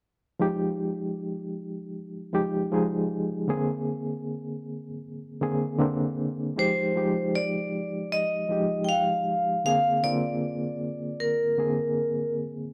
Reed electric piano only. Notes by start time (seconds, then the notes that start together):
0.39 F3 G#3 D#4 G4
2.33 F3 G#3 D#4 G4
2.72 F3 G#3 D#4 G#4
3.48 D3 A#3 C4 G#4
5.41 D3 A#3 C4 G#4
5.79 D3 A#3 C4 D4
6.56 F3 G#3 D#4 G4
6.95 F3 G#3 D#4 G4
8.49 F3 G#3 D#4 G4
9.64 D3 A#3 C4 G#4
10.03 D3 A#3 C4 F4
11.57 D3 A#3 C4 G#4